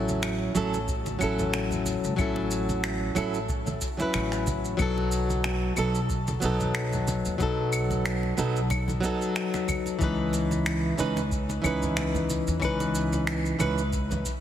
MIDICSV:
0, 0, Header, 1, 4, 480
1, 0, Start_track
1, 0, Tempo, 652174
1, 1610, Time_signature, 4, 2, 24, 8
1, 10601, End_track
2, 0, Start_track
2, 0, Title_t, "Nylon-string guitar"
2, 0, Program_c, 0, 24
2, 0, Note_on_c, 0, 54, 91
2, 0, Note_on_c, 0, 61, 82
2, 0, Note_on_c, 0, 64, 87
2, 0, Note_on_c, 0, 69, 106
2, 376, Note_off_c, 0, 54, 0
2, 382, Note_off_c, 0, 61, 0
2, 388, Note_off_c, 0, 64, 0
2, 394, Note_off_c, 0, 69, 0
2, 402, Note_on_c, 0, 54, 80
2, 407, Note_on_c, 0, 61, 72
2, 415, Note_on_c, 0, 64, 79
2, 420, Note_on_c, 0, 69, 94
2, 565, Note_off_c, 0, 54, 0
2, 567, Note_off_c, 0, 61, 0
2, 571, Note_off_c, 0, 64, 0
2, 573, Note_off_c, 0, 69, 0
2, 874, Note_on_c, 0, 54, 87
2, 886, Note_on_c, 0, 61, 85
2, 898, Note_on_c, 0, 64, 79
2, 909, Note_on_c, 0, 69, 106
2, 1576, Note_off_c, 0, 54, 0
2, 1582, Note_off_c, 0, 61, 0
2, 1588, Note_off_c, 0, 64, 0
2, 1592, Note_on_c, 0, 54, 89
2, 1593, Note_off_c, 0, 69, 0
2, 1605, Note_on_c, 0, 61, 84
2, 1614, Note_on_c, 0, 64, 88
2, 1626, Note_on_c, 0, 69, 97
2, 2295, Note_off_c, 0, 54, 0
2, 2301, Note_off_c, 0, 61, 0
2, 2306, Note_off_c, 0, 64, 0
2, 2312, Note_off_c, 0, 69, 0
2, 2318, Note_on_c, 0, 54, 86
2, 2327, Note_on_c, 0, 61, 78
2, 2331, Note_on_c, 0, 64, 79
2, 2337, Note_on_c, 0, 69, 88
2, 2483, Note_off_c, 0, 54, 0
2, 2487, Note_off_c, 0, 61, 0
2, 2489, Note_off_c, 0, 64, 0
2, 2492, Note_off_c, 0, 69, 0
2, 2924, Note_on_c, 0, 54, 89
2, 2933, Note_on_c, 0, 61, 85
2, 2945, Note_on_c, 0, 64, 84
2, 2959, Note_on_c, 0, 71, 104
2, 3495, Note_off_c, 0, 54, 0
2, 3499, Note_off_c, 0, 61, 0
2, 3506, Note_off_c, 0, 64, 0
2, 3511, Note_on_c, 0, 54, 89
2, 3512, Note_off_c, 0, 71, 0
2, 3522, Note_on_c, 0, 59, 81
2, 3534, Note_on_c, 0, 63, 82
2, 3547, Note_on_c, 0, 69, 100
2, 4214, Note_off_c, 0, 54, 0
2, 4220, Note_off_c, 0, 59, 0
2, 4226, Note_off_c, 0, 63, 0
2, 4232, Note_off_c, 0, 69, 0
2, 4241, Note_on_c, 0, 54, 79
2, 4248, Note_on_c, 0, 59, 77
2, 4254, Note_on_c, 0, 63, 77
2, 4260, Note_on_c, 0, 69, 94
2, 4404, Note_off_c, 0, 54, 0
2, 4407, Note_off_c, 0, 59, 0
2, 4411, Note_off_c, 0, 63, 0
2, 4414, Note_off_c, 0, 69, 0
2, 4712, Note_on_c, 0, 54, 85
2, 4724, Note_on_c, 0, 59, 87
2, 4738, Note_on_c, 0, 63, 87
2, 4750, Note_on_c, 0, 69, 97
2, 5414, Note_off_c, 0, 54, 0
2, 5421, Note_off_c, 0, 59, 0
2, 5428, Note_off_c, 0, 63, 0
2, 5433, Note_on_c, 0, 54, 93
2, 5434, Note_off_c, 0, 69, 0
2, 5443, Note_on_c, 0, 59, 83
2, 5456, Note_on_c, 0, 63, 85
2, 5466, Note_on_c, 0, 69, 103
2, 6135, Note_off_c, 0, 54, 0
2, 6140, Note_off_c, 0, 59, 0
2, 6146, Note_off_c, 0, 63, 0
2, 6152, Note_off_c, 0, 69, 0
2, 6161, Note_on_c, 0, 54, 86
2, 6166, Note_on_c, 0, 59, 83
2, 6172, Note_on_c, 0, 63, 76
2, 6177, Note_on_c, 0, 69, 94
2, 6324, Note_off_c, 0, 54, 0
2, 6326, Note_off_c, 0, 59, 0
2, 6330, Note_off_c, 0, 63, 0
2, 6332, Note_off_c, 0, 69, 0
2, 6628, Note_on_c, 0, 54, 98
2, 6640, Note_on_c, 0, 59, 82
2, 6652, Note_on_c, 0, 63, 84
2, 6664, Note_on_c, 0, 69, 105
2, 7333, Note_off_c, 0, 54, 0
2, 7339, Note_off_c, 0, 59, 0
2, 7345, Note_off_c, 0, 63, 0
2, 7350, Note_on_c, 0, 52, 92
2, 7351, Note_off_c, 0, 69, 0
2, 7363, Note_on_c, 0, 61, 81
2, 7373, Note_on_c, 0, 63, 85
2, 7386, Note_on_c, 0, 71, 102
2, 8054, Note_off_c, 0, 52, 0
2, 8060, Note_off_c, 0, 61, 0
2, 8065, Note_off_c, 0, 63, 0
2, 8072, Note_off_c, 0, 71, 0
2, 8078, Note_on_c, 0, 52, 88
2, 8085, Note_on_c, 0, 61, 82
2, 8090, Note_on_c, 0, 63, 81
2, 8097, Note_on_c, 0, 71, 92
2, 8242, Note_off_c, 0, 52, 0
2, 8246, Note_off_c, 0, 61, 0
2, 8248, Note_off_c, 0, 63, 0
2, 8252, Note_off_c, 0, 71, 0
2, 8550, Note_on_c, 0, 52, 91
2, 8563, Note_on_c, 0, 61, 84
2, 8574, Note_on_c, 0, 63, 86
2, 8585, Note_on_c, 0, 71, 103
2, 9254, Note_off_c, 0, 52, 0
2, 9260, Note_off_c, 0, 61, 0
2, 9266, Note_off_c, 0, 63, 0
2, 9271, Note_off_c, 0, 71, 0
2, 9271, Note_on_c, 0, 52, 93
2, 9283, Note_on_c, 0, 61, 84
2, 9294, Note_on_c, 0, 63, 86
2, 9308, Note_on_c, 0, 71, 106
2, 9974, Note_off_c, 0, 52, 0
2, 9980, Note_off_c, 0, 61, 0
2, 9986, Note_off_c, 0, 63, 0
2, 9993, Note_off_c, 0, 71, 0
2, 10000, Note_on_c, 0, 52, 87
2, 10005, Note_on_c, 0, 61, 82
2, 10011, Note_on_c, 0, 63, 81
2, 10019, Note_on_c, 0, 71, 96
2, 10164, Note_off_c, 0, 52, 0
2, 10166, Note_off_c, 0, 61, 0
2, 10169, Note_off_c, 0, 63, 0
2, 10173, Note_off_c, 0, 71, 0
2, 10601, End_track
3, 0, Start_track
3, 0, Title_t, "Upright bass"
3, 0, Program_c, 1, 32
3, 0, Note_on_c, 1, 33, 90
3, 370, Note_off_c, 1, 33, 0
3, 409, Note_on_c, 1, 33, 84
3, 850, Note_off_c, 1, 33, 0
3, 891, Note_on_c, 1, 33, 85
3, 1454, Note_off_c, 1, 33, 0
3, 1504, Note_on_c, 1, 37, 76
3, 1586, Note_off_c, 1, 37, 0
3, 1608, Note_on_c, 1, 33, 90
3, 2289, Note_off_c, 1, 33, 0
3, 2329, Note_on_c, 1, 33, 86
3, 2770, Note_off_c, 1, 33, 0
3, 3050, Note_on_c, 1, 33, 76
3, 3490, Note_off_c, 1, 33, 0
3, 3527, Note_on_c, 1, 35, 96
3, 4209, Note_off_c, 1, 35, 0
3, 4249, Note_on_c, 1, 35, 85
3, 4690, Note_off_c, 1, 35, 0
3, 4728, Note_on_c, 1, 35, 85
3, 5292, Note_off_c, 1, 35, 0
3, 5342, Note_on_c, 1, 39, 70
3, 5425, Note_off_c, 1, 39, 0
3, 5448, Note_on_c, 1, 35, 92
3, 6129, Note_off_c, 1, 35, 0
3, 6167, Note_on_c, 1, 35, 85
3, 6609, Note_off_c, 1, 35, 0
3, 7369, Note_on_c, 1, 37, 94
3, 8049, Note_off_c, 1, 37, 0
3, 8090, Note_on_c, 1, 37, 84
3, 8530, Note_off_c, 1, 37, 0
3, 8567, Note_on_c, 1, 37, 90
3, 9132, Note_off_c, 1, 37, 0
3, 9182, Note_on_c, 1, 40, 79
3, 9265, Note_off_c, 1, 40, 0
3, 9289, Note_on_c, 1, 37, 90
3, 9970, Note_off_c, 1, 37, 0
3, 10008, Note_on_c, 1, 37, 91
3, 10449, Note_off_c, 1, 37, 0
3, 10601, End_track
4, 0, Start_track
4, 0, Title_t, "Drums"
4, 63, Note_on_c, 9, 63, 81
4, 64, Note_on_c, 9, 82, 30
4, 137, Note_off_c, 9, 63, 0
4, 137, Note_off_c, 9, 82, 0
4, 165, Note_on_c, 9, 62, 44
4, 168, Note_on_c, 9, 26, 97
4, 168, Note_on_c, 9, 75, 74
4, 169, Note_on_c, 9, 82, 47
4, 239, Note_off_c, 9, 62, 0
4, 241, Note_off_c, 9, 26, 0
4, 241, Note_off_c, 9, 75, 0
4, 243, Note_off_c, 9, 82, 0
4, 410, Note_on_c, 9, 82, 73
4, 483, Note_off_c, 9, 82, 0
4, 543, Note_on_c, 9, 82, 32
4, 546, Note_on_c, 9, 62, 69
4, 616, Note_off_c, 9, 82, 0
4, 619, Note_off_c, 9, 62, 0
4, 648, Note_on_c, 9, 36, 91
4, 651, Note_on_c, 9, 82, 42
4, 722, Note_off_c, 9, 36, 0
4, 725, Note_off_c, 9, 82, 0
4, 781, Note_on_c, 9, 82, 28
4, 782, Note_on_c, 9, 62, 51
4, 784, Note_on_c, 9, 63, 63
4, 854, Note_off_c, 9, 82, 0
4, 855, Note_off_c, 9, 62, 0
4, 858, Note_off_c, 9, 63, 0
4, 890, Note_on_c, 9, 75, 72
4, 891, Note_on_c, 9, 82, 81
4, 963, Note_off_c, 9, 75, 0
4, 965, Note_off_c, 9, 82, 0
4, 1023, Note_on_c, 9, 82, 29
4, 1025, Note_on_c, 9, 64, 94
4, 1096, Note_off_c, 9, 82, 0
4, 1098, Note_off_c, 9, 64, 0
4, 1130, Note_on_c, 9, 26, 89
4, 1131, Note_on_c, 9, 62, 75
4, 1132, Note_on_c, 9, 82, 41
4, 1204, Note_off_c, 9, 26, 0
4, 1205, Note_off_c, 9, 62, 0
4, 1206, Note_off_c, 9, 82, 0
4, 1256, Note_on_c, 9, 64, 71
4, 1263, Note_on_c, 9, 82, 30
4, 1330, Note_off_c, 9, 64, 0
4, 1337, Note_off_c, 9, 82, 0
4, 1366, Note_on_c, 9, 63, 87
4, 1369, Note_on_c, 9, 62, 46
4, 1371, Note_on_c, 9, 82, 75
4, 1440, Note_off_c, 9, 63, 0
4, 1443, Note_off_c, 9, 62, 0
4, 1445, Note_off_c, 9, 82, 0
4, 1503, Note_on_c, 9, 82, 36
4, 1576, Note_off_c, 9, 82, 0
4, 1608, Note_on_c, 9, 36, 110
4, 1609, Note_on_c, 9, 75, 68
4, 1610, Note_on_c, 9, 82, 43
4, 1681, Note_off_c, 9, 36, 0
4, 1682, Note_off_c, 9, 75, 0
4, 1684, Note_off_c, 9, 82, 0
4, 1737, Note_on_c, 9, 62, 65
4, 1811, Note_off_c, 9, 62, 0
4, 1849, Note_on_c, 9, 82, 73
4, 1923, Note_off_c, 9, 82, 0
4, 1980, Note_on_c, 9, 63, 85
4, 1981, Note_on_c, 9, 62, 41
4, 1982, Note_on_c, 9, 82, 31
4, 2053, Note_off_c, 9, 63, 0
4, 2055, Note_off_c, 9, 62, 0
4, 2055, Note_off_c, 9, 82, 0
4, 2088, Note_on_c, 9, 26, 93
4, 2090, Note_on_c, 9, 82, 44
4, 2162, Note_off_c, 9, 26, 0
4, 2164, Note_off_c, 9, 82, 0
4, 2328, Note_on_c, 9, 75, 68
4, 2329, Note_on_c, 9, 82, 74
4, 2330, Note_on_c, 9, 62, 74
4, 2401, Note_off_c, 9, 75, 0
4, 2403, Note_off_c, 9, 82, 0
4, 2404, Note_off_c, 9, 62, 0
4, 2460, Note_on_c, 9, 82, 32
4, 2534, Note_off_c, 9, 82, 0
4, 2567, Note_on_c, 9, 36, 101
4, 2568, Note_on_c, 9, 82, 43
4, 2575, Note_on_c, 9, 62, 43
4, 2641, Note_off_c, 9, 36, 0
4, 2642, Note_off_c, 9, 82, 0
4, 2649, Note_off_c, 9, 62, 0
4, 2700, Note_on_c, 9, 63, 72
4, 2700, Note_on_c, 9, 82, 29
4, 2706, Note_on_c, 9, 64, 71
4, 2774, Note_off_c, 9, 63, 0
4, 2774, Note_off_c, 9, 82, 0
4, 2780, Note_off_c, 9, 64, 0
4, 2807, Note_on_c, 9, 36, 56
4, 2808, Note_on_c, 9, 82, 82
4, 2881, Note_off_c, 9, 36, 0
4, 2881, Note_off_c, 9, 82, 0
4, 2941, Note_on_c, 9, 82, 29
4, 2942, Note_on_c, 9, 62, 75
4, 3015, Note_off_c, 9, 62, 0
4, 3015, Note_off_c, 9, 82, 0
4, 3046, Note_on_c, 9, 26, 90
4, 3046, Note_on_c, 9, 75, 65
4, 3048, Note_on_c, 9, 82, 42
4, 3120, Note_off_c, 9, 26, 0
4, 3120, Note_off_c, 9, 75, 0
4, 3121, Note_off_c, 9, 82, 0
4, 3180, Note_on_c, 9, 26, 29
4, 3181, Note_on_c, 9, 82, 31
4, 3188, Note_on_c, 9, 62, 45
4, 3253, Note_off_c, 9, 26, 0
4, 3255, Note_off_c, 9, 82, 0
4, 3261, Note_off_c, 9, 62, 0
4, 3287, Note_on_c, 9, 36, 59
4, 3289, Note_on_c, 9, 63, 89
4, 3290, Note_on_c, 9, 82, 79
4, 3361, Note_off_c, 9, 36, 0
4, 3363, Note_off_c, 9, 63, 0
4, 3364, Note_off_c, 9, 82, 0
4, 3420, Note_on_c, 9, 82, 34
4, 3494, Note_off_c, 9, 82, 0
4, 3526, Note_on_c, 9, 75, 74
4, 3527, Note_on_c, 9, 36, 112
4, 3528, Note_on_c, 9, 82, 41
4, 3600, Note_off_c, 9, 75, 0
4, 3601, Note_off_c, 9, 36, 0
4, 3601, Note_off_c, 9, 82, 0
4, 3663, Note_on_c, 9, 62, 46
4, 3736, Note_off_c, 9, 62, 0
4, 3768, Note_on_c, 9, 82, 69
4, 3841, Note_off_c, 9, 82, 0
4, 3900, Note_on_c, 9, 63, 77
4, 3901, Note_on_c, 9, 82, 29
4, 3973, Note_off_c, 9, 63, 0
4, 3975, Note_off_c, 9, 82, 0
4, 4005, Note_on_c, 9, 26, 93
4, 4007, Note_on_c, 9, 82, 42
4, 4009, Note_on_c, 9, 62, 70
4, 4079, Note_off_c, 9, 26, 0
4, 4080, Note_off_c, 9, 82, 0
4, 4083, Note_off_c, 9, 62, 0
4, 4246, Note_on_c, 9, 75, 67
4, 4247, Note_on_c, 9, 82, 69
4, 4255, Note_on_c, 9, 62, 46
4, 4319, Note_off_c, 9, 75, 0
4, 4321, Note_off_c, 9, 82, 0
4, 4329, Note_off_c, 9, 62, 0
4, 4379, Note_on_c, 9, 82, 30
4, 4452, Note_off_c, 9, 82, 0
4, 4487, Note_on_c, 9, 36, 90
4, 4489, Note_on_c, 9, 82, 42
4, 4561, Note_off_c, 9, 36, 0
4, 4562, Note_off_c, 9, 82, 0
4, 4619, Note_on_c, 9, 82, 31
4, 4621, Note_on_c, 9, 62, 66
4, 4622, Note_on_c, 9, 63, 61
4, 4693, Note_off_c, 9, 82, 0
4, 4695, Note_off_c, 9, 62, 0
4, 4695, Note_off_c, 9, 63, 0
4, 4727, Note_on_c, 9, 82, 74
4, 4800, Note_off_c, 9, 82, 0
4, 4859, Note_on_c, 9, 64, 76
4, 4860, Note_on_c, 9, 82, 30
4, 4861, Note_on_c, 9, 62, 47
4, 4933, Note_off_c, 9, 64, 0
4, 4933, Note_off_c, 9, 82, 0
4, 4935, Note_off_c, 9, 62, 0
4, 4966, Note_on_c, 9, 26, 88
4, 4966, Note_on_c, 9, 75, 66
4, 4967, Note_on_c, 9, 82, 40
4, 5039, Note_off_c, 9, 26, 0
4, 5039, Note_off_c, 9, 75, 0
4, 5041, Note_off_c, 9, 82, 0
4, 5098, Note_on_c, 9, 82, 30
4, 5103, Note_on_c, 9, 64, 75
4, 5172, Note_off_c, 9, 82, 0
4, 5176, Note_off_c, 9, 64, 0
4, 5208, Note_on_c, 9, 63, 78
4, 5208, Note_on_c, 9, 82, 68
4, 5209, Note_on_c, 9, 62, 71
4, 5282, Note_off_c, 9, 63, 0
4, 5282, Note_off_c, 9, 82, 0
4, 5283, Note_off_c, 9, 62, 0
4, 5339, Note_on_c, 9, 82, 33
4, 5412, Note_off_c, 9, 82, 0
4, 5448, Note_on_c, 9, 36, 105
4, 5448, Note_on_c, 9, 62, 55
4, 5448, Note_on_c, 9, 82, 38
4, 5521, Note_off_c, 9, 36, 0
4, 5521, Note_off_c, 9, 82, 0
4, 5522, Note_off_c, 9, 62, 0
4, 5687, Note_on_c, 9, 75, 79
4, 5689, Note_on_c, 9, 82, 71
4, 5761, Note_off_c, 9, 75, 0
4, 5762, Note_off_c, 9, 82, 0
4, 5819, Note_on_c, 9, 62, 64
4, 5819, Note_on_c, 9, 63, 76
4, 5822, Note_on_c, 9, 82, 28
4, 5892, Note_off_c, 9, 63, 0
4, 5893, Note_off_c, 9, 62, 0
4, 5895, Note_off_c, 9, 82, 0
4, 5929, Note_on_c, 9, 26, 98
4, 5930, Note_on_c, 9, 82, 43
4, 6002, Note_off_c, 9, 26, 0
4, 6004, Note_off_c, 9, 82, 0
4, 6058, Note_on_c, 9, 62, 48
4, 6132, Note_off_c, 9, 62, 0
4, 6169, Note_on_c, 9, 82, 71
4, 6242, Note_off_c, 9, 82, 0
4, 6301, Note_on_c, 9, 82, 29
4, 6375, Note_off_c, 9, 82, 0
4, 6405, Note_on_c, 9, 62, 73
4, 6408, Note_on_c, 9, 36, 86
4, 6410, Note_on_c, 9, 75, 77
4, 6412, Note_on_c, 9, 82, 40
4, 6478, Note_off_c, 9, 62, 0
4, 6481, Note_off_c, 9, 36, 0
4, 6484, Note_off_c, 9, 75, 0
4, 6485, Note_off_c, 9, 82, 0
4, 6534, Note_on_c, 9, 64, 70
4, 6538, Note_on_c, 9, 63, 60
4, 6543, Note_on_c, 9, 82, 28
4, 6608, Note_off_c, 9, 64, 0
4, 6612, Note_off_c, 9, 63, 0
4, 6617, Note_off_c, 9, 82, 0
4, 6648, Note_on_c, 9, 36, 54
4, 6651, Note_on_c, 9, 82, 73
4, 6653, Note_on_c, 9, 62, 48
4, 6722, Note_off_c, 9, 36, 0
4, 6725, Note_off_c, 9, 82, 0
4, 6727, Note_off_c, 9, 62, 0
4, 6783, Note_on_c, 9, 82, 29
4, 6856, Note_off_c, 9, 82, 0
4, 6889, Note_on_c, 9, 26, 85
4, 6890, Note_on_c, 9, 82, 36
4, 6962, Note_off_c, 9, 26, 0
4, 6964, Note_off_c, 9, 82, 0
4, 7020, Note_on_c, 9, 62, 74
4, 7022, Note_on_c, 9, 26, 27
4, 7024, Note_on_c, 9, 82, 30
4, 7094, Note_off_c, 9, 62, 0
4, 7096, Note_off_c, 9, 26, 0
4, 7098, Note_off_c, 9, 82, 0
4, 7126, Note_on_c, 9, 63, 83
4, 7128, Note_on_c, 9, 36, 58
4, 7129, Note_on_c, 9, 75, 75
4, 7131, Note_on_c, 9, 82, 76
4, 7199, Note_off_c, 9, 63, 0
4, 7201, Note_off_c, 9, 36, 0
4, 7203, Note_off_c, 9, 75, 0
4, 7205, Note_off_c, 9, 82, 0
4, 7256, Note_on_c, 9, 62, 45
4, 7262, Note_on_c, 9, 82, 31
4, 7330, Note_off_c, 9, 62, 0
4, 7336, Note_off_c, 9, 82, 0
4, 7368, Note_on_c, 9, 36, 110
4, 7369, Note_on_c, 9, 82, 42
4, 7442, Note_off_c, 9, 36, 0
4, 7443, Note_off_c, 9, 82, 0
4, 7603, Note_on_c, 9, 62, 71
4, 7610, Note_on_c, 9, 82, 69
4, 7676, Note_off_c, 9, 62, 0
4, 7684, Note_off_c, 9, 82, 0
4, 7736, Note_on_c, 9, 63, 89
4, 7741, Note_on_c, 9, 82, 28
4, 7810, Note_off_c, 9, 63, 0
4, 7815, Note_off_c, 9, 82, 0
4, 7847, Note_on_c, 9, 26, 98
4, 7847, Note_on_c, 9, 75, 81
4, 7848, Note_on_c, 9, 62, 56
4, 7848, Note_on_c, 9, 82, 44
4, 7920, Note_off_c, 9, 26, 0
4, 7920, Note_off_c, 9, 75, 0
4, 7921, Note_off_c, 9, 62, 0
4, 7922, Note_off_c, 9, 82, 0
4, 8088, Note_on_c, 9, 82, 67
4, 8161, Note_off_c, 9, 82, 0
4, 8221, Note_on_c, 9, 62, 78
4, 8221, Note_on_c, 9, 82, 29
4, 8294, Note_off_c, 9, 62, 0
4, 8295, Note_off_c, 9, 82, 0
4, 8328, Note_on_c, 9, 36, 94
4, 8330, Note_on_c, 9, 82, 41
4, 8401, Note_off_c, 9, 36, 0
4, 8404, Note_off_c, 9, 82, 0
4, 8459, Note_on_c, 9, 63, 64
4, 8462, Note_on_c, 9, 62, 54
4, 8462, Note_on_c, 9, 82, 29
4, 8532, Note_off_c, 9, 63, 0
4, 8536, Note_off_c, 9, 62, 0
4, 8536, Note_off_c, 9, 82, 0
4, 8569, Note_on_c, 9, 75, 80
4, 8571, Note_on_c, 9, 82, 73
4, 8643, Note_off_c, 9, 75, 0
4, 8644, Note_off_c, 9, 82, 0
4, 8703, Note_on_c, 9, 82, 29
4, 8708, Note_on_c, 9, 64, 86
4, 8777, Note_off_c, 9, 82, 0
4, 8782, Note_off_c, 9, 64, 0
4, 8808, Note_on_c, 9, 26, 91
4, 8810, Note_on_c, 9, 82, 38
4, 8811, Note_on_c, 9, 62, 75
4, 8882, Note_off_c, 9, 26, 0
4, 8884, Note_off_c, 9, 62, 0
4, 8884, Note_off_c, 9, 82, 0
4, 8940, Note_on_c, 9, 64, 83
4, 8944, Note_on_c, 9, 82, 28
4, 9014, Note_off_c, 9, 64, 0
4, 9018, Note_off_c, 9, 82, 0
4, 9051, Note_on_c, 9, 82, 72
4, 9053, Note_on_c, 9, 62, 52
4, 9053, Note_on_c, 9, 63, 84
4, 9125, Note_off_c, 9, 82, 0
4, 9126, Note_off_c, 9, 62, 0
4, 9126, Note_off_c, 9, 63, 0
4, 9182, Note_on_c, 9, 82, 30
4, 9255, Note_off_c, 9, 82, 0
4, 9289, Note_on_c, 9, 36, 109
4, 9289, Note_on_c, 9, 75, 81
4, 9291, Note_on_c, 9, 82, 40
4, 9362, Note_off_c, 9, 36, 0
4, 9363, Note_off_c, 9, 75, 0
4, 9365, Note_off_c, 9, 82, 0
4, 9423, Note_on_c, 9, 62, 85
4, 9424, Note_on_c, 9, 82, 28
4, 9496, Note_off_c, 9, 62, 0
4, 9497, Note_off_c, 9, 82, 0
4, 9532, Note_on_c, 9, 82, 71
4, 9605, Note_off_c, 9, 82, 0
4, 9662, Note_on_c, 9, 82, 27
4, 9663, Note_on_c, 9, 62, 56
4, 9665, Note_on_c, 9, 63, 84
4, 9736, Note_off_c, 9, 82, 0
4, 9737, Note_off_c, 9, 62, 0
4, 9738, Note_off_c, 9, 63, 0
4, 9769, Note_on_c, 9, 26, 103
4, 9770, Note_on_c, 9, 82, 42
4, 9842, Note_off_c, 9, 26, 0
4, 9844, Note_off_c, 9, 82, 0
4, 9903, Note_on_c, 9, 82, 27
4, 9976, Note_off_c, 9, 82, 0
4, 10010, Note_on_c, 9, 75, 75
4, 10011, Note_on_c, 9, 62, 85
4, 10011, Note_on_c, 9, 82, 72
4, 10083, Note_off_c, 9, 75, 0
4, 10085, Note_off_c, 9, 62, 0
4, 10085, Note_off_c, 9, 82, 0
4, 10144, Note_on_c, 9, 82, 30
4, 10217, Note_off_c, 9, 82, 0
4, 10250, Note_on_c, 9, 36, 91
4, 10252, Note_on_c, 9, 82, 43
4, 10254, Note_on_c, 9, 62, 52
4, 10324, Note_off_c, 9, 36, 0
4, 10326, Note_off_c, 9, 82, 0
4, 10328, Note_off_c, 9, 62, 0
4, 10386, Note_on_c, 9, 82, 31
4, 10387, Note_on_c, 9, 63, 60
4, 10392, Note_on_c, 9, 64, 81
4, 10460, Note_off_c, 9, 82, 0
4, 10461, Note_off_c, 9, 63, 0
4, 10466, Note_off_c, 9, 64, 0
4, 10491, Note_on_c, 9, 36, 54
4, 10494, Note_on_c, 9, 82, 77
4, 10564, Note_off_c, 9, 36, 0
4, 10568, Note_off_c, 9, 82, 0
4, 10601, End_track
0, 0, End_of_file